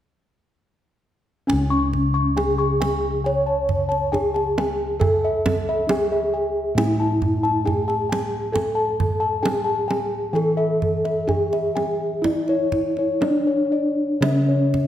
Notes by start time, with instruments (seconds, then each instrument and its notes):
1.47 kettle gongs C#4 G#5, bronze metallophone C#4, kendang low
1.52 kettle gongs C#2
1.70 kettle gongs C#6
1.93 kendang slap, kendang low
2.14 kettle gongs C#6
2.36 kettle gongs D4 G#5, bronze metallophone G#4, kendang high
2.58 kettle gongs C#6
2.81 kettle gongs G#5, kendang high
3.24 bronze metallophone C#5, kettle gongs G#5, kendang slap
3.46 kettle gongs A5
3.69 kendang low
3.89 kettle gongs A5, kendang slap
4.12 kettle gongs D4 G#5, bronze metallophone G#4, kendang slap, kendang low
4.34 kettle gongs A5, kendang slap
4.58 kettle gongs G#5, kendang high
5.00 bronze metallophone A4, kettle gongs A4 G#5, kendang low
5.25 kettle gongs E5
5.46 kendang slap, kendang high, kendang low
5.69 kettle gongs E5
5.87 kettle gongs D4 G#5, bronze metallophone G#4, kendang high
6.12 kettle gongs E5
6.34 kettle gongs G#5
6.75 kettle gongs A2 G#5, bronze metallophone E4, kendang slap, kendang high
7.00 kettle gongs A5
7.22 kendang low
7.43 kettle gongs A5, kendang slap
7.64 kettle gongs D4 G#5, bronze metallophone G#4, kendang slap, kendang low
7.88 kettle gongs A5, kendang slap
8.09 kettle gongs G#5, kendang high
8.52 kettle gongs A4 G#5, bronze metallophone A4, kendang low
8.75 kettle gongs A5
9.00 kendang slap, kendang low
9.20 kettle gongs A5
9.43 kettle gongs D4 G#5, bronze metallophone G#4, kendang high
9.64 kettle gongs A5
9.88 kettle gongs G#5, kendang high
10.33 kettle gongs E3 G#5, bronze metallophone A4, kendang slap
10.57 kettle gongs E5
10.82 kendang low
11.05 kettle gongs E5, kendang slap
11.27 kettle gongs D4 G#5, bronze metallophone G#4, kendang slap, kendang low
11.53 kettle gongs E5, kendang slap
11.75 kettle gongs G#5, kendang high
12.22 kettle gongs E4 D5, bronze metallophone E4, kendang low
12.48 kettle gongs C#5, kendang slap
12.72 kendang slap, kendang low
12.97 kettle gongs C#5, kendang slap
13.21 kettle gongs D4 D5, bronze metallophone D4, kendang high
13.47 kettle gongs C#5
13.72 kettle gongs D5
14.21 kettle gongs C#3 E5, bronze metallophone C#4, kendang slap, kendang high
14.48 kettle gongs C#5
14.74 kendang slap, kendang low